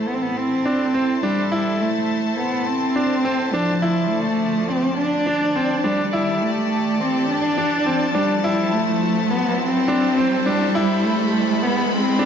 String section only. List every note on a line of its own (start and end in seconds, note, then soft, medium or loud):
0.00 3.78 E4 medium
0.00 3.79 A4 medium
0.00 6.09 C5 medium
0.00 6.09 A5 medium
3.82 6.11 F3 medium
3.82 8.40 D5 medium
6.13 8.42 G4 medium
6.13 8.42 A4 medium
6.13 10.71 A5 medium
8.44 12.25 E4 medium
8.44 12.25 A4 medium
8.44 12.25 C5 medium
10.75 12.25 B5 medium